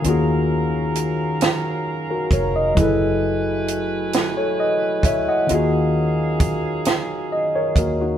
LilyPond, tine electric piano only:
\new Staff \with { instrumentName = "Tine electric piano" } { \time 6/8 \key ees \minor \tempo 4. = 44 << { r2 r16 <ges' bes'>16 <bes' des''>16 ees''16~ | ees''16 r4. <a' des''>16 <ces'' ees''>8 <des'' fes''>16 <ees'' ges''>16~ | <ees'' ges''>16 r4. r16 ees''16 <bes' des''>16 <ges' bes'>16 <ees' ges'>16 | } \\ { <ees des' f' ges' aes'>2. | <ges fes' aes' a' ces''>2. | <ees des' f' ges' aes'>2. | } >> }